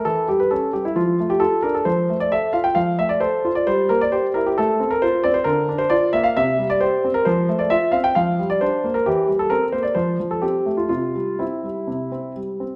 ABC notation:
X:1
M:4/4
L:1/16
Q:1/4=132
K:F
V:1 name="Grand piano"
A2 G =B A2 G E F3 G A2 _B A | c3 d e2 f g f2 e d c3 d | c2 B d c2 B G A3 B c2 d c | [K:Cmix] B3 c d2 e f e3 d c3 B |
c3 d e2 f g f3 d c3 B | G3 A B2 c d c3 A G3 F | F4 E8 z4 |]
V:2 name="Grand piano"
E,2 G,2 ^C2 G,2 F,2 A,2 F2 D2 | F,2 A,2 A2 F2 F,2 A,2 A2 F2 | G,2 B,2 G2 E2 A,2 C2 F2 C2 | [K:Cmix] D,2 D2 F2 B,2 C,2 G,2 G2 C2 |
F,2 A,2 F2 C2 F,2 G,2 D2 B,2 | E,2 G,2 C2 B,2 F,2 F,2 C2 A,2 | C,2 G,2 C2 G,2 C,2 C2 G,2 C2 |]